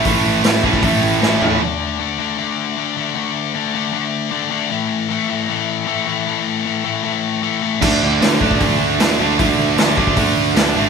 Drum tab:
CC |----------------|----------------|----------------|----------------|
HH |o---o---o-------|----------------|----------------|----------------|
SD |----o-------o---|----------------|----------------|----------------|
FT |--------------o-|----------------|----------------|----------------|
BD |o-----ooo-------|----------------|----------------|----------------|

CC |----------------|x---------------|----------------|
HH |----------------|----o---o---o---|o---o---o---o---|
SD |----------------|----o-------o---|----o-------o---|
FT |----------------|----------------|----------------|
BD |----------------|o-----ooo-------|o-----ooo-------|